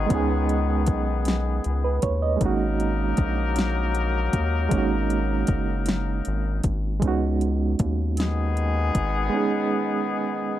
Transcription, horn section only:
0.00 1.99 D#3 medium
0.00 1.99 G#3 medium
0.00 1.99 B3 medium
0.00 1.99 G#4 medium
2.41 6.60 F#3 medium
2.41 6.60 A#3 medium
2.41 6.60 D#4 medium
2.41 6.60 A#4 medium
8.18 10.60 D#3 medium
8.18 10.60 G#3 medium
8.18 10.60 B3 medium
8.18 10.60 G#4 medium

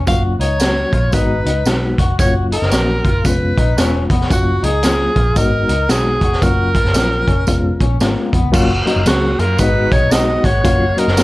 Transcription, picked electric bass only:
0.08 0.35 F#1 loud
0.39 0.84 C#2 medium
0.93 1.10 A#1 medium
1.13 1.41 G#1 medium
1.45 1.62 C#2 medium
1.66 1.93 B1 medium
1.98 2.15 F1 medium
2.19 2.55 F#1 loud
2.62 2.70 F#1 medium
2.73 3.00 A#1 medium
3.05 3.22 F#1 medium
3.25 3.52 F1 loud
3.57 3.74 A#1 medium
3.78 4.05 E1 medium
4.10 4.27 F1 medium
4.31 4.58 F#1 loud
4.63 5.08 C#2 medium
5.16 5.33 A#1 medium
5.36 5.64 G#1 loud
5.69 5.86 C#2 medium
5.89 6.17 B1 medium
6.21 6.38 F1 medium
6.42 6.78 F#1 loud
6.85 6.93 F#1 medium
6.95 7.22 A#1 medium
7.27 7.44 F#1 medium
7.48 7.75 F1 medium
7.80 7.97 A#1 medium
8.01 8.14 G#1 medium
8.33 8.42 F2 medium
8.43 8.52 C#2 medium
8.54 8.81 F#1 loud
8.96 9.05 F#1 medium
9.06 9.34 C#2 loud
9.39 9.56 F#2 medium
9.59 9.86 G#1 loud
9.92 10.36 B1 medium
10.44 10.61 G#1 medium
10.64 10.92 F#1 loud
11.08 11.23 F#1 medium

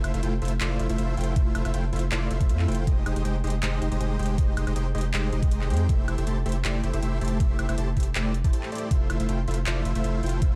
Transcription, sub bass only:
0.04 0.12 F1 loud
0.14 0.21 F1 loud
0.23 0.40 F1 loud
0.42 0.59 F1 loud
0.61 0.78 F1 loud
0.80 0.88 F1 loud
0.90 0.97 F1 loud
0.99 1.16 F1 loud
1.18 1.35 F1 loud
1.36 1.53 F1 loud
1.55 1.63 F1 loud
1.65 1.72 F1 loud
1.74 1.91 F1 loud
1.93 2.10 F1 loud
2.12 2.29 F1 loud
2.31 2.39 F1 loud
2.41 2.51 F1 loud
2.49 2.67 F2 medium
2.68 2.85 F1 loud
2.87 3.04 F1 loud
3.06 3.14 F1 loud
3.16 3.23 F1 medium
3.25 3.42 F1 loud
3.44 3.61 F1 loud
3.63 3.80 F1 loud
3.82 3.90 F1 loud
3.92 3.99 F1 loud
4.00 4.17 F1 loud
4.19 4.36 F1 loud
4.38 4.55 F1 loud
4.57 4.65 F1 medium
4.67 4.74 F1 loud
4.76 4.93 F1 loud
4.95 5.12 F1 medium
5.14 5.31 F1 loud
5.33 5.40 F1 loud
5.43 5.50 F1 loud
5.51 5.72 F1 loud
5.70 5.87 F2 loud
5.89 6.06 F1 loud
6.08 6.16 F1 loud
6.18 6.25 F1 loud
6.27 6.44 F1 loud
6.46 6.63 F1 loud
6.65 6.82 F1 loud
6.83 6.91 F1 loud
6.93 7.01 F1 loud
7.02 7.19 F1 medium
7.21 7.38 F1 loud
7.40 7.57 F1 loud
7.59 7.67 F1 medium
7.69 7.76 F1 loud
7.78 7.95 F1 loud
7.97 8.14 F1 loud
8.15 8.42 F1 loud
8.44 8.52 F1 loud
8.91 9.08 F1 loud
9.10 9.18 F1 loud
9.20 9.27 F1 loud
9.29 9.46 F1 loud
9.47 9.65 F1 medium
9.66 9.83 F1 loud
9.85 9.93 F1 loud
9.95 10.02 F1 loud
10.04 10.21 F1 medium
10.23 10.40 F1 loud
10.42 10.55 F1 loud

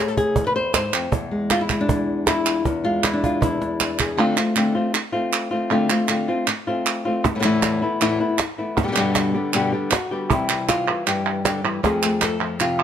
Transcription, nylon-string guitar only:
0.00 0.36 A2 medium
0.00 1.10 A3 medium
0.08 0.17 A4 medium
0.17 0.46 G#4 loud
0.36 0.74 E2 medium
0.47 0.55 B4 loud
0.56 0.74 C5 loud
0.75 0.92 G#2 medium
0.75 1.13 C5 medium
0.93 1.11 F2 medium
1.12 1.88 E2 medium
1.31 1.70 G#3 medium
1.51 1.61 F4 loud
1.61 2.18 E4 medium
1.70 2.63 G#3 soft
1.81 2.66 D4 medium
1.88 2.64 E2 medium
2.28 2.66 E4 medium
2.47 2.83 F4 loud
2.65 3.40 E2 medium
2.84 4.16 G#3 medium
2.84 3.04 F4 medium
3.04 3.42 E4 medium
3.13 3.60 D4 medium
3.24 3.42 F4 medium
3.41 4.18 E2 medium
3.41 4.00 E4 medium
3.61 3.79 D4 soft
3.80 4.16 D4 soft
4.00 4.17 G#4 soft
4.17 4.36 D3 medium
4.17 4.37 A3 medium
4.17 4.37 C4 medium
4.17 4.36 F4 medium
4.37 4.55 A3 soft
4.37 4.55 C4 soft
4.37 4.56 F4 medium
4.56 4.74 D3 medium
4.56 4.75 A3 medium
4.56 4.74 C4 medium
4.56 4.73 F4 medium
4.75 4.93 A3 soft
4.75 4.93 C4 soft
4.75 4.93 F4 medium
4.94 muted nylon-string guitar stroke medium
5.12 5.52 A3 soft
5.12 5.51 C4 soft
5.12 5.50 F4 medium
5.51 5.70 A3 soft
5.51 5.70 C4 soft
5.51 5.70 F4 medium
5.70 5.89 D3 medium
5.70 5.90 A3 medium
5.70 5.90 C4 medium
5.70 5.89 F4 medium
5.90 6.08 A3 soft
5.90 6.09 C4 soft
5.90 6.09 F4 medium
6.08 6.27 D3 medium
6.08 6.28 A3 medium
6.08 6.28 C4 medium
6.08 6.27 F4 medium
6.28 6.47 A3 soft
6.28 6.47 C4 medium
6.28 6.47 F4 medium
6.48 muted nylon-string guitar stroke medium
6.67 7.05 A3 soft
6.67 7.05 C4 medium
6.67 7.04 F4 medium
7.05 7.25 A3 soft
7.05 7.24 C4 soft
7.05 7.24 F4 medium
7.25 muted nylon-string guitar stroke medium
7.35 7.38 A2 medium
7.35 7.38 E3 medium
7.35 7.39 A3 medium
7.35 7.39 B3 medium
7.35 7.39 E4 medium
7.39 7.43 A2 medium
7.39 7.44 E3 medium
7.39 7.44 A3 medium
7.39 7.44 B3 medium
7.39 7.44 E4 medium
7.44 7.81 E2 medium
7.44 7.82 A2 medium
7.44 7.82 E3 medium
7.44 7.82 A3 medium
7.44 7.82 B3 medium
7.44 7.81 E4 medium
7.82 8.00 E3 soft
7.82 8.00 A3 soft
7.82 8.01 B3 medium
7.82 8.00 E4 medium
8.00 8.19 E2 medium
8.00 8.19 A2 medium
8.00 8.19 E3 medium
8.00 8.20 A3 medium
8.00 8.20 B3 medium
8.00 8.19 E4 medium
8.20 8.38 E3 soft
8.20 8.38 A3 soft
8.20 8.38 B3 medium
8.20 8.39 E4 medium
8.39 muted nylon-string guitar stroke medium
8.58 8.78 E3 soft
8.58 8.77 A3 soft
8.58 8.77 B3 soft
8.58 8.77 E4 soft
8.78 muted nylon-string guitar stroke medium
8.83 8.87 B2 medium
8.83 8.87 D3 medium
8.83 8.87 G3 medium
8.83 8.87 B3 medium
8.83 8.88 G4 medium
8.88 8.91 B2 medium
8.88 8.91 D3 medium
8.88 8.92 G3 medium
8.88 8.92 B3 medium
8.88 8.92 G4 medium
8.92 8.96 B2 medium
8.92 8.96 D3 medium
8.92 8.96 G3 medium
8.92 8.96 B3 medium
8.92 8.96 G4 medium
8.96 9.34 G2 medium
8.96 9.34 B2 medium
8.96 9.34 D3 medium
8.96 9.35 G3 medium
8.96 9.34 B3 medium
8.96 9.33 G4 medium
9.34 9.54 D3 soft
9.34 9.54 G3 soft
9.34 9.53 B3 soft
9.34 9.53 G4 medium
9.53 9.72 G2 medium
9.53 9.72 B2 medium
9.53 9.73 D3 medium
9.53 9.73 G3 medium
9.53 9.72 B3 medium
9.53 9.71 G4 medium
9.72 9.91 D3 soft
9.72 9.91 G3 soft
9.72 9.91 B3 medium
9.72 9.91 G4 medium
9.91 10.31 F#4 medium
9.91 muted nylon-string guitar stroke medium
10.11 10.31 D3 soft
10.11 10.30 G3 soft
10.11 10.30 B3 soft
10.11 10.30 G4 soft
10.30 10.88 C3 medium
10.30 10.87 E3 soft
10.30 10.49 G3 medium
10.30 11.83 C4 soft
10.30 10.68 E4 medium
10.51 11.84 G3 soft
10.69 11.07 F4 medium
10.89 11.45 E3 medium
11.07 11.82 G2 medium
11.07 11.44 G4 medium
11.45 11.64 D3 medium
11.45 11.84 G4 medium
11.64 11.83 E3 medium
11.83 12.83 F2 medium
11.83 12.40 F3 soft
11.83 12.03 A3 soft
11.83 12.83 C4 medium
11.83 12.22 G#4 medium
12.04 12.83 A3 soft
12.23 12.60 A4 medium
12.41 12.83 F3 medium
12.60 12.83 C3 medium
12.60 12.83 F4 medium

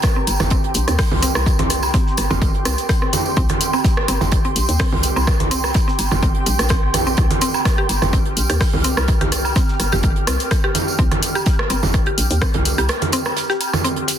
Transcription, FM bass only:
0.27 0.38 G1 medium
0.40 0.72 G1 medium
0.75 0.86 A#1 loud
0.88 0.97 D#2 loud
1.11 1.31 C2 loud
1.35 1.91 C2 medium
2.18 2.28 G1 medium
2.31 2.41 G1 loud
2.42 2.52 G1 loud
2.65 2.76 C2 medium
3.37 3.48 C2 loud
4.08 4.19 G1 medium
4.21 4.53 G1 medium
4.56 4.67 A#1 medium
4.69 4.78 D#2 loud
4.92 5.12 C2 loud
5.16 5.72 C2 medium
5.99 6.09 G1 medium
6.12 6.22 G1 medium
6.23 6.33 G1 loud
6.46 6.57 A#1 loud
6.59 7.15 A#1 medium
7.18 7.28 C2 loud
7.89 8.00 G1 medium
8.02 8.34 G1 medium
8.37 8.48 A#1 medium
8.50 8.59 D#2 loud
8.74 8.93 C2 loud
8.97 9.53 C2 medium
9.80 9.90 G1 medium
9.93 10.03 G1 medium
10.03 10.14 G1 loud
10.27 10.38 C2 medium
10.99 11.09 C2 loud
11.70 11.81 G1 medium
11.83 12.15 G1 medium
12.18 12.28 A#1 medium
12.31 12.40 D#2 loud
12.54 12.74 C2 loud
12.78 12.89 C2 medium

